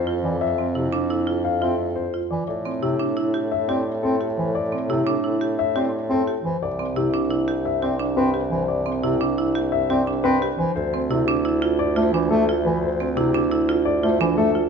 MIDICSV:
0, 0, Header, 1, 5, 480
1, 0, Start_track
1, 0, Tempo, 344828
1, 576, Time_signature, 6, 2, 24, 8
1, 20451, End_track
2, 0, Start_track
2, 0, Title_t, "Grand piano"
2, 0, Program_c, 0, 0
2, 0, Note_on_c, 0, 72, 66
2, 172, Note_off_c, 0, 72, 0
2, 338, Note_on_c, 0, 74, 49
2, 571, Note_on_c, 0, 76, 66
2, 649, Note_off_c, 0, 74, 0
2, 887, Note_off_c, 0, 76, 0
2, 2013, Note_on_c, 0, 77, 66
2, 2253, Note_on_c, 0, 76, 45
2, 2328, Note_off_c, 0, 77, 0
2, 2568, Note_off_c, 0, 76, 0
2, 2722, Note_on_c, 0, 72, 61
2, 3044, Note_off_c, 0, 72, 0
2, 3209, Note_on_c, 0, 74, 44
2, 3429, Note_off_c, 0, 74, 0
2, 3450, Note_on_c, 0, 74, 54
2, 3766, Note_off_c, 0, 74, 0
2, 3929, Note_on_c, 0, 67, 51
2, 4246, Note_off_c, 0, 67, 0
2, 4894, Note_on_c, 0, 76, 58
2, 5128, Note_on_c, 0, 74, 52
2, 5208, Note_off_c, 0, 76, 0
2, 5446, Note_off_c, 0, 74, 0
2, 5611, Note_on_c, 0, 69, 66
2, 5927, Note_off_c, 0, 69, 0
2, 6089, Note_on_c, 0, 72, 50
2, 6332, Note_on_c, 0, 74, 65
2, 6406, Note_off_c, 0, 72, 0
2, 6647, Note_off_c, 0, 74, 0
2, 6815, Note_on_c, 0, 67, 50
2, 7128, Note_off_c, 0, 67, 0
2, 7779, Note_on_c, 0, 76, 68
2, 8010, Note_on_c, 0, 74, 46
2, 8089, Note_off_c, 0, 76, 0
2, 8327, Note_off_c, 0, 74, 0
2, 8497, Note_on_c, 0, 69, 72
2, 8809, Note_off_c, 0, 69, 0
2, 8985, Note_on_c, 0, 72, 52
2, 9223, Note_on_c, 0, 74, 64
2, 9291, Note_off_c, 0, 72, 0
2, 9531, Note_off_c, 0, 74, 0
2, 9699, Note_on_c, 0, 67, 51
2, 10010, Note_off_c, 0, 67, 0
2, 10653, Note_on_c, 0, 76, 60
2, 10895, Note_on_c, 0, 74, 48
2, 10967, Note_off_c, 0, 76, 0
2, 11208, Note_off_c, 0, 74, 0
2, 11373, Note_on_c, 0, 71, 75
2, 11688, Note_off_c, 0, 71, 0
2, 11857, Note_on_c, 0, 72, 52
2, 12085, Note_on_c, 0, 74, 59
2, 12169, Note_off_c, 0, 72, 0
2, 12405, Note_off_c, 0, 74, 0
2, 12572, Note_on_c, 0, 67, 55
2, 12887, Note_off_c, 0, 67, 0
2, 13530, Note_on_c, 0, 76, 69
2, 13780, Note_on_c, 0, 74, 54
2, 13846, Note_off_c, 0, 76, 0
2, 14090, Note_off_c, 0, 74, 0
2, 14251, Note_on_c, 0, 71, 80
2, 14567, Note_off_c, 0, 71, 0
2, 14733, Note_on_c, 0, 72, 58
2, 14951, Note_off_c, 0, 72, 0
2, 14972, Note_on_c, 0, 72, 69
2, 15287, Note_off_c, 0, 72, 0
2, 15461, Note_on_c, 0, 67, 52
2, 15770, Note_off_c, 0, 67, 0
2, 16411, Note_on_c, 0, 74, 79
2, 16654, Note_on_c, 0, 72, 53
2, 16727, Note_off_c, 0, 74, 0
2, 16968, Note_off_c, 0, 72, 0
2, 17128, Note_on_c, 0, 69, 78
2, 17446, Note_off_c, 0, 69, 0
2, 17610, Note_on_c, 0, 71, 58
2, 17843, Note_on_c, 0, 72, 64
2, 17926, Note_off_c, 0, 71, 0
2, 18164, Note_off_c, 0, 72, 0
2, 18325, Note_on_c, 0, 67, 60
2, 18645, Note_off_c, 0, 67, 0
2, 19285, Note_on_c, 0, 74, 73
2, 19540, Note_on_c, 0, 72, 65
2, 19604, Note_off_c, 0, 74, 0
2, 19850, Note_off_c, 0, 72, 0
2, 20010, Note_on_c, 0, 69, 79
2, 20327, Note_off_c, 0, 69, 0
2, 20451, End_track
3, 0, Start_track
3, 0, Title_t, "Marimba"
3, 0, Program_c, 1, 12
3, 97, Note_on_c, 1, 65, 47
3, 409, Note_off_c, 1, 65, 0
3, 813, Note_on_c, 1, 60, 47
3, 1048, Note_on_c, 1, 64, 45
3, 1127, Note_off_c, 1, 60, 0
3, 1288, Note_on_c, 1, 62, 67
3, 1366, Note_off_c, 1, 64, 0
3, 1535, Note_on_c, 1, 64, 51
3, 1606, Note_off_c, 1, 62, 0
3, 1769, Note_on_c, 1, 65, 51
3, 1848, Note_off_c, 1, 64, 0
3, 2086, Note_off_c, 1, 65, 0
3, 2254, Note_on_c, 1, 65, 48
3, 2568, Note_off_c, 1, 65, 0
3, 2977, Note_on_c, 1, 65, 39
3, 3289, Note_off_c, 1, 65, 0
3, 3695, Note_on_c, 1, 60, 49
3, 3934, Note_on_c, 1, 64, 54
3, 4008, Note_off_c, 1, 60, 0
3, 4170, Note_on_c, 1, 62, 61
3, 4248, Note_off_c, 1, 64, 0
3, 4410, Note_on_c, 1, 64, 51
3, 4486, Note_off_c, 1, 62, 0
3, 4651, Note_on_c, 1, 67, 53
3, 4726, Note_off_c, 1, 64, 0
3, 4967, Note_off_c, 1, 67, 0
3, 5136, Note_on_c, 1, 67, 51
3, 5449, Note_off_c, 1, 67, 0
3, 5856, Note_on_c, 1, 67, 46
3, 6169, Note_off_c, 1, 67, 0
3, 6575, Note_on_c, 1, 60, 47
3, 6818, Note_on_c, 1, 64, 55
3, 6888, Note_off_c, 1, 60, 0
3, 7052, Note_on_c, 1, 62, 70
3, 7129, Note_off_c, 1, 64, 0
3, 7292, Note_on_c, 1, 64, 52
3, 7367, Note_off_c, 1, 62, 0
3, 7533, Note_on_c, 1, 67, 53
3, 7607, Note_off_c, 1, 64, 0
3, 7848, Note_off_c, 1, 67, 0
3, 8013, Note_on_c, 1, 67, 54
3, 8328, Note_off_c, 1, 67, 0
3, 8733, Note_on_c, 1, 67, 48
3, 9048, Note_off_c, 1, 67, 0
3, 9456, Note_on_c, 1, 60, 52
3, 9694, Note_on_c, 1, 64, 59
3, 9768, Note_off_c, 1, 60, 0
3, 9934, Note_on_c, 1, 62, 64
3, 10008, Note_off_c, 1, 64, 0
3, 10170, Note_on_c, 1, 64, 55
3, 10248, Note_off_c, 1, 62, 0
3, 10410, Note_on_c, 1, 67, 61
3, 10487, Note_off_c, 1, 64, 0
3, 10726, Note_off_c, 1, 67, 0
3, 10891, Note_on_c, 1, 67, 53
3, 11129, Note_on_c, 1, 62, 58
3, 11207, Note_off_c, 1, 67, 0
3, 11446, Note_off_c, 1, 62, 0
3, 11607, Note_on_c, 1, 67, 44
3, 11926, Note_off_c, 1, 67, 0
3, 12331, Note_on_c, 1, 60, 54
3, 12577, Note_on_c, 1, 64, 53
3, 12647, Note_off_c, 1, 60, 0
3, 12818, Note_on_c, 1, 62, 70
3, 12889, Note_off_c, 1, 64, 0
3, 13062, Note_on_c, 1, 64, 56
3, 13129, Note_off_c, 1, 62, 0
3, 13297, Note_on_c, 1, 67, 65
3, 13371, Note_off_c, 1, 64, 0
3, 13609, Note_off_c, 1, 67, 0
3, 13782, Note_on_c, 1, 67, 55
3, 14024, Note_on_c, 1, 62, 56
3, 14091, Note_off_c, 1, 67, 0
3, 14331, Note_off_c, 1, 62, 0
3, 14507, Note_on_c, 1, 67, 52
3, 14812, Note_off_c, 1, 67, 0
3, 15223, Note_on_c, 1, 60, 54
3, 15460, Note_on_c, 1, 64, 56
3, 15531, Note_off_c, 1, 60, 0
3, 15700, Note_on_c, 1, 62, 75
3, 15770, Note_off_c, 1, 64, 0
3, 15938, Note_on_c, 1, 64, 59
3, 16010, Note_off_c, 1, 62, 0
3, 16177, Note_on_c, 1, 65, 68
3, 16249, Note_off_c, 1, 64, 0
3, 16489, Note_off_c, 1, 65, 0
3, 16654, Note_on_c, 1, 65, 59
3, 16899, Note_on_c, 1, 62, 61
3, 16968, Note_off_c, 1, 65, 0
3, 17210, Note_off_c, 1, 62, 0
3, 17383, Note_on_c, 1, 65, 57
3, 17691, Note_off_c, 1, 65, 0
3, 18100, Note_on_c, 1, 60, 58
3, 18333, Note_on_c, 1, 64, 65
3, 18410, Note_off_c, 1, 60, 0
3, 18576, Note_on_c, 1, 62, 80
3, 18648, Note_off_c, 1, 64, 0
3, 18813, Note_on_c, 1, 64, 61
3, 18888, Note_off_c, 1, 62, 0
3, 19056, Note_on_c, 1, 65, 68
3, 19128, Note_off_c, 1, 64, 0
3, 19369, Note_off_c, 1, 65, 0
3, 19534, Note_on_c, 1, 65, 53
3, 19778, Note_on_c, 1, 62, 73
3, 19848, Note_off_c, 1, 65, 0
3, 20089, Note_off_c, 1, 62, 0
3, 20257, Note_on_c, 1, 65, 50
3, 20451, Note_off_c, 1, 65, 0
3, 20451, End_track
4, 0, Start_track
4, 0, Title_t, "Bass clarinet"
4, 0, Program_c, 2, 71
4, 333, Note_on_c, 2, 52, 58
4, 515, Note_off_c, 2, 52, 0
4, 1057, Note_on_c, 2, 48, 47
4, 1237, Note_off_c, 2, 48, 0
4, 2259, Note_on_c, 2, 60, 52
4, 2438, Note_off_c, 2, 60, 0
4, 3221, Note_on_c, 2, 52, 53
4, 3400, Note_off_c, 2, 52, 0
4, 3935, Note_on_c, 2, 48, 53
4, 4116, Note_off_c, 2, 48, 0
4, 5134, Note_on_c, 2, 60, 53
4, 5315, Note_off_c, 2, 60, 0
4, 5619, Note_on_c, 2, 60, 67
4, 5799, Note_off_c, 2, 60, 0
4, 6095, Note_on_c, 2, 52, 56
4, 6276, Note_off_c, 2, 52, 0
4, 6821, Note_on_c, 2, 48, 52
4, 7000, Note_off_c, 2, 48, 0
4, 8017, Note_on_c, 2, 60, 59
4, 8197, Note_off_c, 2, 60, 0
4, 8487, Note_on_c, 2, 60, 71
4, 8671, Note_off_c, 2, 60, 0
4, 8964, Note_on_c, 2, 52, 61
4, 9149, Note_off_c, 2, 52, 0
4, 9692, Note_on_c, 2, 48, 51
4, 9874, Note_off_c, 2, 48, 0
4, 10892, Note_on_c, 2, 60, 56
4, 11074, Note_off_c, 2, 60, 0
4, 11368, Note_on_c, 2, 60, 75
4, 11551, Note_off_c, 2, 60, 0
4, 11843, Note_on_c, 2, 52, 59
4, 12028, Note_off_c, 2, 52, 0
4, 12573, Note_on_c, 2, 48, 61
4, 12755, Note_off_c, 2, 48, 0
4, 13783, Note_on_c, 2, 60, 63
4, 13960, Note_off_c, 2, 60, 0
4, 14256, Note_on_c, 2, 60, 80
4, 14436, Note_off_c, 2, 60, 0
4, 14730, Note_on_c, 2, 52, 70
4, 14913, Note_off_c, 2, 52, 0
4, 15453, Note_on_c, 2, 48, 57
4, 15634, Note_off_c, 2, 48, 0
4, 16655, Note_on_c, 2, 57, 63
4, 16836, Note_off_c, 2, 57, 0
4, 16891, Note_on_c, 2, 52, 56
4, 17073, Note_off_c, 2, 52, 0
4, 17135, Note_on_c, 2, 57, 79
4, 17316, Note_off_c, 2, 57, 0
4, 17615, Note_on_c, 2, 52, 67
4, 17796, Note_off_c, 2, 52, 0
4, 18337, Note_on_c, 2, 48, 65
4, 18517, Note_off_c, 2, 48, 0
4, 19534, Note_on_c, 2, 57, 64
4, 19715, Note_off_c, 2, 57, 0
4, 19774, Note_on_c, 2, 52, 58
4, 19955, Note_off_c, 2, 52, 0
4, 20011, Note_on_c, 2, 57, 76
4, 20193, Note_off_c, 2, 57, 0
4, 20451, End_track
5, 0, Start_track
5, 0, Title_t, "Bassoon"
5, 0, Program_c, 3, 70
5, 0, Note_on_c, 3, 41, 60
5, 3309, Note_off_c, 3, 41, 0
5, 3460, Note_on_c, 3, 45, 56
5, 9067, Note_off_c, 3, 45, 0
5, 9217, Note_on_c, 3, 36, 55
5, 14825, Note_off_c, 3, 36, 0
5, 14972, Note_on_c, 3, 38, 66
5, 20451, Note_off_c, 3, 38, 0
5, 20451, End_track
0, 0, End_of_file